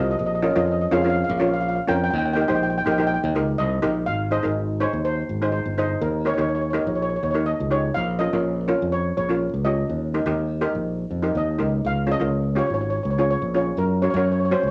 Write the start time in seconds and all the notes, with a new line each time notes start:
Already playing: C2 C4 F4 A#4
0.03 D#5
0.11 D#5
0.19 A#1 D#5
0.26 D#5
0.35 D#5
0.42 C#4 F4 A#4 D#5
0.50 D#5
0.56 F2 C#4 F4 A#4 D#5
0.66 D#5
0.72 D#5
0.81 D#5
0.91 F2 C#4 F4 G#4 A#4 F5
1.02 C#4 F4 A#4 F5
1.09 F5
1.16 F5
1.24 F5
1.29 A#1 F5
1.38 C#4 F4 A#4 F5
1.47 F5
1.54 F5
1.61 F5
1.68 F5
1.76 F5
1.88 F2 C#4 F4 A#4 G5
1.96 G5
2.04 G5
2.11 D#2 G5
2.18 G5
2.25 G5
2.33 D#4 G4 A#4 G5
2.41 G5
2.48 A#1 D#4 G4 C5 G5
2.55 G5
2.63 G5
2.70 G5
2.78 G5
2.85 A#1 D#4 G4 A#4 G5
2.92 G5
2.98 D#4 G4 A#4 G5
3.07 G5
3.14 G5
3.24 D#2
3.35 C#2 D#4 G4 A#4
3.58 C2 D#5
3.82 A#1 D#4 G4 A#4
4.06 G#1 F5
4.31 D#4 G#4 C5 D#5
4.43 G#1 D#4 G#4 A#4
4.80 D#4 G#4 C5 C#5
4.93 D#2
5.05 C5
5.29 G#1
5.42 D#4 G#4 C5
5.52 C5
5.65 G1
5.78 D#4 G#4 C5 D#5
6.01 D#2 A#4
6.25 D#4 G4 A#4 C#5
6.34 D#4 C#5
6.38 D#2 G4 A#4 C#5
6.49 C#5
6.55 C#5
6.62 C#5
6.70 D#4 C#5
6.74 G4 A#4
6.79 C#5
6.87 A#1 C#5
6.95 C#5
7.02 C#5
7.09 C#5
7.16 C#5
7.23 D#2 C#5
7.31 D#4 G4 C#5
7.35 A#4
7.46 D#5
7.60 C#2
7.71 D#4 G4 C#5
7.94 A#1 F5
8.19 C#4 F4 A#4 D#5
8.33 A#1 C#4 F4 A#4
8.68 C#4 F4 A#4
8.82 F2
8.92 C#5
9.17 A#1 C#5
9.29 C#4 F4 A#4
9.54 C#2
9.65 C#4 F4 G4 D#5
9.90 D#2
10.14 D#4 G4 A#4
10.26 D#2 D#4 G4 A#4
10.61 D#4 G4 A#4
10.75 A#1
11.11 F2
11.22 D#4 G4 A#4
11.35 D#2 D#5
11.59 C#2 D#4 G4 A#4
11.85 C#2 F5
12.07 C#4 F4 G#4
12.12 D#5
12.20 C#2 C#4 F4 A#4
12.55 C#4 F4 G4 C#5
12.67 G#1 C#5
12.74 C#5
12.81 C#5
12.90 C#5
12.96 C#5
13.03 C#2 C#5
13.10 C#5
13.18 C#4 F4 G#4 C#5
13.31 C#5
13.42 A#1
13.54 C#4 F4 G#4 C#5
13.77 F#2 A#4
14.02 C#4 F#4 A#4 C#5
14.10 F#2 C#5
14.16 C#4 F#4 A#4 C#5
14.25 C#5
14.32 C#5
14.40 C#5
14.45 C#5
14.51 C#4 F#4 C5 C#5
14.60 C#2 C#5
14.68 C#5